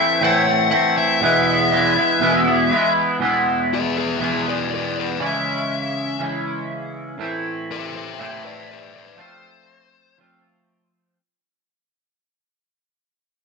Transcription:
Already playing: E3 A3 C4 E4 E5
0.21 A2 E3 A3 C4 E4 F#5
0.45 A3 C4 E4
0.70 E3 A3 C4 E4 F#5
0.97 E5
1.21 E2 B2 E3 G#3 B3 E4
1.71 E3 G#3 B3 E4
1.96 E3 G#3 B3 E4
2.20 E2 B2 E3 G#3 B3 E4
2.45 E3 G#3 B3 E4
2.71 E3 G#3 B3 E4
3.19 E2 B2 E3 G#3 B3 E4
3.74 G#4 E5
3.98 G#4 E5
4.19 E2 B2 E3 G#3 B3 E4
4.23 G#4 E5
4.48 B4 D5
4.74 B4 D5
4.99 B4 D5
5.19 C#3 E3 G#3 C#4 E4
5.26 E5
6.19 C#3 E3 G#3 C#4 E4
7.18 A2 E3 A3 C4 E4
7.71 C5 E5
7.95 C5 E5
8.18 A2 E3 A3 C4 E4 C5 E5
8.45 B4 D5
8.71 B4 D5
8.97 B4 D5
9.16 F3 A3 C4 F4
9.21 C5
10.18 F3 A3 C4 F4

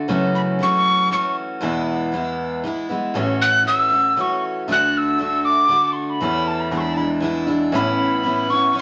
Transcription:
0.08 F#2 C#3 E3 A3 C#4 F#4
0.35 B5
0.59 E3 A3 C#4 F#4 C#6
1.10 E3 A3 C#4 F#4 C#6
1.61 E2 B2 E3 G#3 B3 E4
2.12 E3 G#3 B3 E4
2.64 E3 G#3 B3 E4
2.89 E3 G#3 B3 E4
3.14 A1 A2 E3 A3 C#4 F#4
3.42 F#6
3.64 E3 A3 C#4 E6
3.68 F#4
3.90 A3 C#4 F#4
4.16 E3 A3 C#4 F#4
4.21 C#6
4.68 D2 D3 A3 D4 F#4
4.72 F#6
4.98 E6
5.18 D3 A3 D4 F#4
5.45 D6
5.68 D3 A3 D4 F#4
5.93 C6 C#6
6.10 B5
6.20 E2 E3 A3 C#4 E4
6.48 A5
6.61 B5
6.71 E2 E3 G#3 D4 E4
6.77 B5 C#6
6.94 D4 E4 A5 B5
6.99 E3 G#3
7.20 E3 G#3 D4 E4
7.47 E3 G#3 D4 E4
7.72 A1 A2 E3 B3 C#4 E4 B5
8.23 E3 B3 C#4 E4
8.49 B3 C#4 E4 C#6
8.73 E3 B3 C#4
8.77 E4

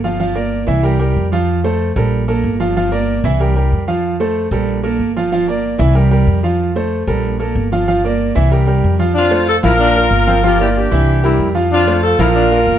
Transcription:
Already playing: G1
0.04 F3 F4 F5
0.20 F3 F4 F5
0.35 A#3 A#4 D5
0.67 C2 E3 E4 E5
0.83 G3 G4 A#4
0.99 G3 G4 A#4
1.16 F2
1.32 F3 F4 F5
1.64 A3 A4 C5
1.96 A#1 G3 A4 A#4
2.28 A#3 A4 A#4
2.44 G1
2.60 F3 F4 F5
2.77 F3 F4 F5
2.92 A#3 A#4 D5
3.24 C2 E3 E4 E5
3.40 G3 G4 A#4
3.55 G3 G4 A#4
3.72 F2
3.88 F3 F4 F5
4.20 A3 A4 C5
4.51 A#1 G3 A4 A#4
4.83 A#3 A4 A#4
4.99 G1
5.16 F3 F4 F5
5.32 F3 F4 F5
5.48 A#3 A#4 D5
5.78 C2 E3 E4 E5
5.95 G3 G4 A#4
6.11 G3 G4 A#4
6.27 F2
6.43 F3 F4 F5
6.75 A3 A4 C5
7.07 A#1 G3 A4 A#4
7.39 A#3 A4 A#4
7.55 G1
7.72 F3 F4 F5
7.88 F3 F4 F5
8.04 A#3 A#4 D5
8.35 C2 E3 E4 E5
8.51 G3 G4 A#4
8.66 G3 G4 A#4
8.84 F2
8.99 F3 F4 F5
9.14 C4 D4 F4
9.31 A3 A4 C5
9.49 F4 A4
9.63 A#1 F3 E4 F4 A#4 F5
9.79 D4
9.96 A#3 F4 A#4
10.11 G1
10.27 F3 C4 F4 F5
10.43 F3 F4 G4 A#4 F5
10.59 A#3 E4 G4 A#4 D5
10.77 D4 G4
10.91 C2 E3 E4 E5
11.23 G3 E4 G4 A#4
11.39 F2
11.55 F3 F4 F5
11.72 C4 D4 F4
11.87 A3 A4 C5
12.03 F4 A4
12.19 A#1 F3 E4 F4 A#4 F5
12.35 D4
12.51 A#3 F4 A#4
12.67 G1

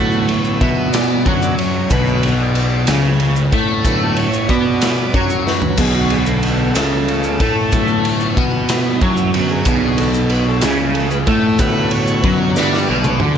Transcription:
Already playing: A2 D3 F#3 A3 B3 F#4
0.12 maracas
0.28 E4, ride
0.44 maracas
0.61 B2 B3 E5, kick, ride
0.92 D5, snare, ride, maracas
1.25 F#2 D3 F#3 B3 C#5, kick, ride
1.42 D5, maracas
1.58 C#5, ride
1.90 B1 B2 D3 F#3 B3 B4, kick, ride, maracas
2.07 maracas
2.23 C#5, ride
2.41 D5
2.55 ride
2.87 C#2 C#3 F#3 B3, snare, ride, maracas
3.20 ride
3.36 maracas
3.52 A2 A3, kick, ride
3.85 D3 F#3 B3 B4, kick, ride, maracas
4.17 C#5, ride
4.33 maracas
4.49 B2 B3 D5, kick, ride, maracas
4.81 snare, ride, maracas
4.98 maracas
5.13 F#2 F#3 C#5, kick, ride, maracas
5.30 maracas
5.47 B4, snare
5.62 floor tom, maracas
5.77 B1 B2 D3 F#3 B3 G#4, kick, crash, ride, maracas
5.94 F#4, maracas
6.10 G#4, ride
6.26 A4, maracas
6.43 ride
6.75 C#2 C#3, snare, ride, maracas
7.08 ride
7.23 maracas
7.40 A2 A3, kick, ride
7.71 D3 F#3 B3, kick, ride, maracas
7.88 maracas
8.05 ride
8.20 maracas
8.37 B2 B3, kick, ride
8.69 snare, ride, maracas
8.95 D#4
9.01 F#2 F#3 E4, kick, ride
9.17 maracas
9.34 D3 F#3 B3 F#4, ride
9.50 G#4
9.65 B1 B2 D3 F#3 B3, kick, ride, maracas
9.97 A4, ride
10.14 maracas
10.29 B4, ride
10.48 A4
10.61 C#2 C#3 G#4, snare, ride, maracas
10.94 A4, ride
11.11 B4, maracas
11.27 A2 A3 A4, kick, ride
11.59 A2 D3 A3 B3 F#4 B4, kick, ride, maracas
11.91 C#5, ride
12.07 maracas
12.22 F#2 F#3 B4, kick, ride
12.39 C#5
12.55 G2 G3 D5, snare, maracas
12.73 snare
12.86 B1 B2 D3 F#3 B3, maracas
13.04 mid tom, maracas
13.20 D2 D3, mid tom

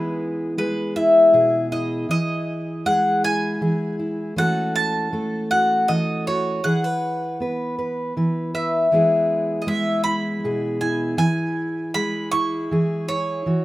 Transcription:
Already playing: E3 G#3 B3 E4 G#4 B4
0.58 G#3 G#4 B4
0.96 E4 E5
1.33 B2 G#4
1.72 E4 D#5
2.09 E3 E4 D#5
2.85 G#3 G#4 F#5
3.24 E4 G#5
3.61 E3 G#4
3.99 E4
4.36 E3 A3 C#4 F#4 A4 F#5
4.76 A5
5.13 A3 A4
5.51 F#4 F#5
5.88 E3 A4 D#5
6.27 F#4 C#5
6.64 E3 G#4 F#5
6.84 B4
7.40 B3 B4
7.79 B4
8.17 E3 B4
8.54 B4 E5
8.92 E3 G#3 B3 E4 G#4
9.62 D#5
9.67 G#3 G#4 E5
10.04 E4 B5
10.44 B2 G#4
10.81 E4 G#5
11.17 E3 E4 G#5
11.94 G#3 G#4 B5
12.32 E4 C#6
12.71 E3 G#4
13.08 E4 C#5
13.46 E3 F#4

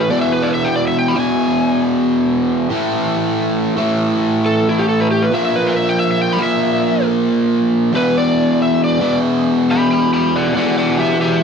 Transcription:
Already playing: E3
0.09 E2 B2 E3 D5
0.21 E5
0.32 B4
0.42 D5
0.54 E5
0.65 G5
0.76 D5
0.88 E5
0.99 G5
1.08 B5
1.15 E2 B2 E3
1.20 G#5
2.69 A2 E3 A3
3.77 A2 E3 A3
4.46 A4
4.69 E4
4.79 G4
4.89 A4
5.00 B4
5.11 G4
5.22 B4
5.31 A#2 F3 A#3 E5
5.45 E5
5.56 B4
5.67 E5
5.77 E5
5.89 G5
5.99 E5
6.11 E5
6.22 G5
6.33 B5
6.38 A#2 F3 A#3
6.43 E5
7.93 E2 B2 E3 B4
8.18 D5
8.62 E5
8.84 D5
8.99 E2 B2 E3
9.71 G5 B5
9.91 G5 B5
10.13 G5 B5
10.36 D5 F#5
10.54 E2 B2 E3 D5 F#5
10.78 D5 F#5
10.99 G4 E5
11.21 G4 E5

